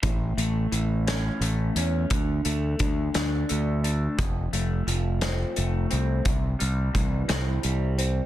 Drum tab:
HH |xxxxxx|xxxxxx|xxxxxx|xxxxxx|
SD |---o--|---o--|---o--|---o--|
BD |o-----|o-o---|o-----|o-o---|